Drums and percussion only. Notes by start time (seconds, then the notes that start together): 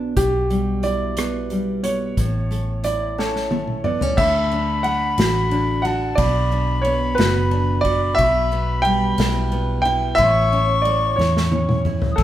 0.17 kick, closed hi-hat
0.50 closed hi-hat
0.83 closed hi-hat
1.17 cross-stick, closed hi-hat
1.50 closed hi-hat
1.84 closed hi-hat
2.17 kick, closed hi-hat
2.52 closed hi-hat
2.84 closed hi-hat
3.19 snare
3.36 snare
3.51 high tom
3.67 mid tom
3.84 mid tom
4.01 floor tom
4.18 kick, crash
4.52 ride
4.84 ride
5.18 snare, ride
5.51 ride
5.85 ride
6.18 kick, ride
6.52 ride
6.85 ride
7.18 snare, ride
7.51 ride
7.85 kick, ride
8.18 kick, ride
8.53 ride
8.85 ride
9.18 snare, ride
9.52 ride
9.85 ride
10.18 kick, ride
10.53 ride
10.85 ride
11.20 snare
11.37 snare
11.52 high tom
11.69 mid tom
11.85 mid tom
12.02 floor tom
12.18 kick, ride